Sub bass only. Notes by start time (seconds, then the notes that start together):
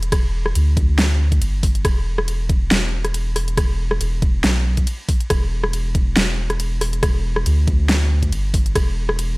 Already playing: E1
0.55 D2
1.41 G1
1.85 E1
2.71 E1
4.01 E1
4.44 B1
5.30 E1
6.16 E1
7.46 D2
8.32 G1
8.75 E1